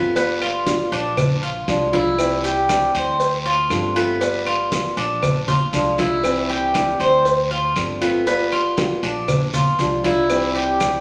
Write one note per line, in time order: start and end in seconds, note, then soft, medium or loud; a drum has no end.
0.00 0.85 G1 medium
0.00 0.15 A3 medium
0.00 0.15 B3 medium
0.00 0.15 C4 medium
0.00 0.15 F4 medium
0.15 0.65 G3 medium
0.15 0.66 B3 medium
0.15 0.41 B3 medium
0.15 0.66 F4 medium
0.15 cowbell loud
0.15 high conga soft
0.15 long guiro medium
0.15 maracas medium
0.41 0.91 F4 medium
0.41 high conga soft
0.41 claves medium
0.66 1.16 G3 medium
0.66 1.16 B3 medium
0.66 1.17 F4 medium
0.66 cowbell medium
0.66 high conga loud
0.66 short guiro medium
0.66 maracas medium
0.92 1.64 A#1 medium
0.92 1.41 D4 medium
0.92 high conga soft
0.92 short guiro medium
0.92 maracas soft
1.17 muted nylon-string guitar stroke medium
1.17 cowbell loud
1.17 high conga soft
1.17 low conga medium
1.17 long guiro medium
1.17 claves medium
1.17 maracas medium
1.43 1.92 F4 medium
1.43 high conga soft
1.67 2.88 C2 loud
1.67 1.92 F3 medium
1.67 1.92 G#3 medium
1.67 1.92 D4 medium
1.67 1.91 F4 medium
1.67 cowbell medium
1.67 high conga medium
1.67 short guiro medium
1.67 maracas medium
1.93 2.18 G#3 medium
1.93 2.18 D4 medium
1.93 2.42 E4 medium
1.93 2.17 F4 medium
1.93 cowbell medium
1.93 high conga medium
1.93 short guiro medium
1.93 maracas soft
2.18 2.68 C3 medium
2.18 2.68 E3 medium
2.18 2.68 G3 medium
2.18 2.68 C4 medium
2.18 2.69 E4 medium
2.18 cowbell loud
2.18 high conga soft
2.18 long guiro medium
2.18 claves medium
2.18 maracas medium
2.44 2.93 G4 medium
2.44 high conga soft
2.44 maracas medium
2.69 3.19 E3 medium
2.69 3.19 G3 medium
2.69 3.19 C4 medium
2.69 3.19 E4 medium
2.69 cowbell medium
2.69 high conga loud
2.69 short guiro medium
2.69 claves medium
2.69 maracas medium
2.94 3.67 D2 medium
2.94 3.44 C5 medium
2.94 high conga soft
2.94 short guiro medium
2.94 maracas soft
3.20 muted nylon-string guitar stroke medium
3.20 cowbell loud
3.20 high conga soft
3.20 long guiro medium
3.20 maracas medium
3.45 3.94 F4 medium
3.45 high conga soft
3.70 4.91 G1 medium
3.70 3.95 D3 medium
3.70 3.95 A3 medium
3.70 3.95 C4 medium
3.70 3.95 F4 medium
3.70 cowbell medium
3.70 high conga medium
3.70 short guiro medium
3.70 claves medium
3.70 maracas medium
3.96 4.20 A3 medium
3.96 4.20 B3 medium
3.96 4.21 C4 medium
3.96 4.20 F4 medium
3.96 short guiro medium
3.96 maracas soft
4.21 4.71 G3 medium
4.21 4.46 B3 medium
4.21 4.71 B3 medium
4.21 4.71 F4 medium
4.21 cowbell loud
4.21 high conga soft
4.21 long guiro medium
4.21 maracas medium
4.46 4.96 F4 medium
4.46 high conga soft
4.46 claves medium
4.72 5.21 G3 medium
4.72 5.22 B3 medium
4.72 5.22 F4 medium
4.72 cowbell medium
4.72 high conga medium
4.72 short guiro medium
4.72 maracas medium
4.97 5.69 A#1 medium
4.97 5.46 D4 medium
4.97 high conga soft
4.97 short guiro medium
4.97 maracas soft
5.22 muted nylon-string guitar stroke medium
5.22 cowbell loud
5.22 high conga soft
5.22 low conga medium
5.22 long guiro medium
5.22 claves medium
5.22 maracas medium
5.48 5.97 F4 medium
5.48 high conga soft
5.48 low conga medium
5.48 maracas medium
5.73 6.93 C2 medium
5.73 5.97 F3 soft
5.73 5.98 G#3 medium
5.73 5.98 D4 medium
5.73 5.97 F4 medium
5.73 cowbell medium
5.73 high conga medium
5.73 short guiro medium
5.73 maracas medium
5.98 6.24 G#3 medium
5.98 6.23 D4 medium
5.98 6.48 E4 medium
5.98 6.23 F4 medium
5.98 cowbell medium
5.98 high conga medium
5.98 short guiro medium
5.98 maracas soft
6.23 6.73 C3 medium
6.23 6.73 E3 medium
6.23 6.74 G3 medium
6.23 6.74 C4 medium
6.23 6.74 E4 medium
6.23 cowbell loud
6.23 high conga soft
6.23 long guiro medium
6.23 claves medium
6.23 maracas medium
6.49 6.99 G4 medium
6.49 high conga soft
6.74 7.24 E3 medium
6.74 7.25 G3 medium
6.74 7.25 C4 medium
6.74 7.25 E4 medium
6.74 cowbell medium
6.74 high conga loud
6.74 short guiro medium
6.74 claves medium
6.74 maracas medium
6.99 7.72 D2 loud
6.99 7.49 C5 medium
6.99 high conga soft
6.99 short guiro medium
6.99 maracas soft
7.25 muted nylon-string guitar stroke medium
7.25 cowbell loud
7.25 high conga soft
7.25 long guiro medium
7.25 maracas medium
7.51 8.00 F4 medium
7.51 high conga soft
7.76 8.96 G1 medium
7.76 8.00 D3 soft
7.76 8.01 A3 medium
7.76 8.01 C4 medium
7.76 8.00 F4 medium
7.76 cowbell medium
7.76 high conga medium
7.76 short guiro medium
7.76 claves medium
7.76 maracas medium
8.01 8.26 A3 medium
8.01 8.26 B3 medium
8.01 8.26 C4 medium
8.01 8.26 F4 medium
8.01 short guiro medium
8.01 maracas soft
8.26 8.76 G3 medium
8.26 8.52 B3 medium
8.26 8.77 B3 medium
8.26 8.77 F4 medium
8.26 cowbell loud
8.26 high conga soft
8.26 long guiro medium
8.26 maracas medium
8.52 9.01 F4 medium
8.52 high conga soft
8.52 claves medium
8.77 9.27 G3 medium
8.77 9.28 B3 medium
8.77 9.28 F4 medium
8.77 cowbell medium
8.77 high conga loud
8.77 short guiro medium
8.77 maracas medium
9.03 9.75 A#1 medium
9.03 9.52 D4 medium
9.03 high conga soft
9.03 short guiro medium
9.03 maracas soft
9.28 muted nylon-string guitar stroke medium
9.28 cowbell loud
9.28 high conga soft
9.28 low conga medium
9.28 long guiro medium
9.28 claves medium
9.28 maracas medium
9.54 10.03 F4 medium
9.54 high conga soft
9.54 low conga medium
9.54 maracas medium
9.79 10.99 C2 medium
9.79 10.03 F3 medium
9.79 10.04 G#3 medium
9.79 10.04 D4 medium
9.79 10.03 F4 medium
9.79 cowbell medium
9.79 high conga medium
9.79 short guiro medium
9.79 maracas medium
10.04 10.29 G#3 medium
10.04 10.29 D4 medium
10.04 10.54 E4 medium
10.04 10.29 F4 medium
10.04 cowbell medium
10.04 high conga medium
10.04 short guiro medium
10.04 maracas soft
10.29 10.79 C3 medium
10.29 10.79 E3 medium
10.29 10.79 G3 medium
10.29 10.80 C4 medium
10.29 10.80 E4 medium
10.29 cowbell loud
10.29 high conga soft
10.29 long guiro medium
10.29 claves medium
10.29 maracas medium
10.55 11.01 G4 medium
10.55 high conga soft
10.80 11.01 E3 medium
10.80 11.01 G3 medium
10.80 11.01 C4 medium
10.80 11.01 E4 medium
10.80 cowbell medium
10.80 high conga loud
10.80 short guiro medium
10.80 claves medium
10.80 maracas medium